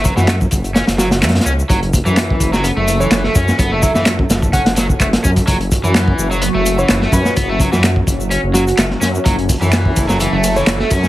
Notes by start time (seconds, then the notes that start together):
Already playing: F#1
0.04 F#3, kick, closed hi-hat, shaker
0.16 F#2 E3 F#4, snare, shaker
0.28 A3 F#4, snare, clap, closed hi-hat, shaker
0.41 kick, shaker
0.51 F#1, kick, closed hi-hat, shaker
0.64 closed hi-hat, shaker
0.74 C#4, snare, closed hi-hat, shaker
0.87 F#1, snare, closed hi-hat, shaker
0.98 F#3 F#4, snare, closed hi-hat, shaker
1.11 F#4, snare, closed hi-hat, shaker
1.22 F#2 A3, snare, clap, closed hi-hat, shaker
1.29 snare, closed hi-hat
1.35 snare, closed hi-hat
1.40 snare, closed hi-hat
1.45 C#2 C#4, shaker
1.59 shaker
1.69 F#1 F#3 C#4 A4, kick, closed hi-hat, shaker
1.83 closed hi-hat
1.93 kick, closed hi-hat, shaker
2.05 F#2 E3, shaker
2.17 snare, clap, closed hi-hat, shaker
2.30 kick
2.40 F#1, kick, closed hi-hat, shaker
2.53 F#3, snare, shaker
2.64 B3, closed hi-hat, shaker
2.76 F#1 A3
2.88 closed hi-hat, shaker
3.00 E3 C#5, shaker
3.11 F#1, snare, clap, closed hi-hat, shaker
3.24 A3, snare
3.35 F#2 C#4, kick, closed hi-hat, shaker
3.48 snare, shaker
3.59 F#1 B3, kick, closed hi-hat, shaker
3.72 A3
3.82 F#3 E5, kick, closed hi-hat, shaker
3.94 F#2 E3 E5, snare, shaker
4.06 A3, snare, clap, closed hi-hat, shaker
4.19 kick
4.29 F#1, snare, closed hi-hat, shaker
4.42 kick, shaker
4.53 C#4 F#5, kick, closed hi-hat, shaker
4.65 F#1 F#5, snare, closed hi-hat
4.76 F#3, snare, closed hi-hat, shaker
4.89 kick, shaker
5.00 F#1 A3, kick, clap, closed hi-hat, shaker
5.13 snare, closed hi-hat
5.24 F#2 C#4, kick, shaker
5.36 kick, closed hi-hat, shaker
5.47 F#1 F#3 F#4, kick, closed hi-hat, shaker
5.61 closed hi-hat
5.72 kick, closed hi-hat, shaker
5.83 F#2 E3, shaker
5.95 snare, clap, closed hi-hat, shaker
6.08 kick
6.18 F#1, shaker
6.31 F#3, shaker
6.42 B3, closed hi-hat, shaker
6.54 F#1 A3
6.66 closed hi-hat, shaker
6.78 E3 C#5, shaker
6.89 F#1, snare, clap, closed hi-hat, shaker
7.02 A3, snare
7.12 F#2 C#4 B4, kick, closed hi-hat, shaker
7.25 B4, snare, shaker
7.36 F#1 B3, kick, closed hi-hat, shaker
7.49 A3
7.60 F#3, kick, closed hi-hat, shaker
7.72 F#2 E3 F#4, snare, shaker
7.83 A3 F#4, snare, clap, closed hi-hat, shaker
7.96 kick
8.07 F#1, kick, closed hi-hat, shaker
8.20 shaker
8.31 C#4, closed hi-hat, shaker
8.43 F#1
8.54 F#3 F#4, snare, closed hi-hat, shaker
8.67 F#4, closed hi-hat, shaker
8.77 F#1 A3, snare, clap, closed hi-hat, shaker
8.91 snare
9.01 F#2 C#4, snare, closed hi-hat, shaker
9.15 shaker
9.25 F#1 F#3 A4, kick, closed hi-hat, shaker
9.39 closed hi-hat
9.49 kick, closed hi-hat, ride, shaker
9.61 F#2 E3, shaker
9.73 snare, clap, closed hi-hat, shaker
9.85 kick
9.96 F#1, kick, closed hi-hat, ride, shaker
10.08 F#3, snare, shaker
10.20 E3, closed hi-hat, shaker
10.32 F#1 A3
10.44 closed hi-hat, ride, shaker
10.56 E3 C#5, shaker
10.67 F#1 C#5, snare, clap, closed hi-hat, shaker
10.80 A3, snare
10.90 F#2 C#4, kick, closed hi-hat, ride, shaker
11.03 snare, shaker